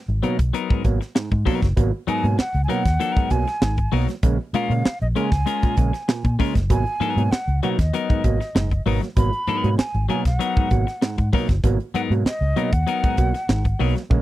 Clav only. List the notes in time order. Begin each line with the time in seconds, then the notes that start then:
0.23 B2 F#3 A#3
0.54 F#3 A#3
0.70 G#2
0.84 B2 F#3 A#3
1.15 G#2
1.46 B2 F#3 A#3
1.63 F#3 A#3
1.77 B2 F#3 A#3
2.08 G#2
2.24 B2 F#3 A#3
2.69 B2 F#3 A#3
3.00 F#3 A#3
3.17 G#2
3.31 B2 F#3 A#3
3.62 G#2
3.92 B2 F#3 A#3
4.09 F#3 A#3
4.23 C#3 G#3 A#3
4.54 A#2
4.71 C#3 G#3 A#3
5.16 C#3 G#3 A#3
5.47 G#3 A#3
5.63 A#2
5.77 C#3 G#3 A#3
6.09 A#2
6.39 C#3 G#3 A#3
6.56 G#3 A#3
6.70 B2 F#3 A#3
7.01 G#2
7.17 B2 F#3 A#3
7.63 B2 F#3 A#3
7.93 F#3 A#3
8.10 G#2
8.24 B2 F#3 A#3
8.55 G#2
8.86 B2 F#3 A#3
9.03 F#3 A#3
9.17 B2 F#3 A#3
9.48 G#2
9.64 B2 F#3 A#3
10.09 B2 F#3 A#3
10.41 F#3 A#3
10.57 G#2
10.71 B2 F#3 A#3
11.02 G#2
11.33 B2 F#3 A#3
11.49 F#3 A#3
11.64 B2 F#3 A#3
11.95 G#2
12.11 B2 F#3 A#3
12.56 B2 F#3 A#3
12.87 F#3 A#3
13.04 G#2
13.18 B2 F#3 A#3
13.49 G#2
13.79 B2 F#3 A#3
13.96 F#3 A#3
14.10 C#3 G#3 A#3